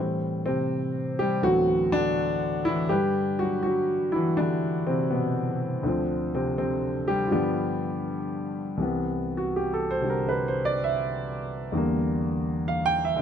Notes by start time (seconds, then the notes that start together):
Already playing: A2 E3
0.00 G3 C4
0.46 C3 C4
1.19 G3 G4
1.42 D2 A2 E3 F#3 B3 C4 F#4
1.46 F#3
1.92 D3 D4
2.65 E3 E4
2.89 G2 D3 G3 G4 B4
3.39 F#3 F#4
3.63 F#3 F#4
4.12 E3 E4
4.37 D3 E3 G3 D4
4.87 C3 C4
5.10 B2 B3
5.83 D2 D3 F3
5.88 C4
6.35 C3 C4
6.58 C3 C4
7.08 G3 G4
7.27 G2 F4
7.31 D3 F3 G3 B3 G4
8.77 C2 C3 E3
8.82 B3
9.37 F#4
9.56 G4
9.74 A4
9.91 C5
10.01 C3 D3 G3
10.10 A#4
10.29 B4
10.48 C5
10.65 D5
10.84 E5
11.72 E2 D3 G3
11.77 A#3
12.68 F5
12.86 G5
13.05 E5
13.16 D#2